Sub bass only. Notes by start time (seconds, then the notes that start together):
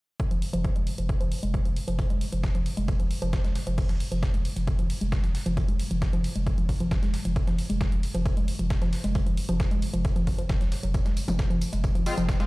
0.31 F1
0.53 F1
0.76 F1
0.98 F1
1.21 F1
1.43 F1
1.65 F1
1.88 F1
2.10 F1
2.32 F1
2.55 F1
2.77 F1
3.00 F1
3.22 F1
3.44 F1
3.67 F1
3.89 F1
4.12 F1
4.34 F1
4.56 F1
4.79 F1
5.01 F1
5.24 F1
5.46 F1
5.68 F1
5.91 F1
6.13 F1
6.36 F1
6.58 F1
6.80 F1
7.03 F1
7.25 F1
7.47 F1
7.70 F1
7.92 F1
8.15 F1
8.37 F1
8.59 F1
8.82 F1
9.04 F1
9.26 F1
9.49 F1
9.71 F1
9.94 F1
10.16 F1
10.39 F1
10.61 F1
10.83 F1
11.06 F1
11.28 F1
11.51 F1
11.73 F1
11.95 F1
12.18 F1
12.40 F1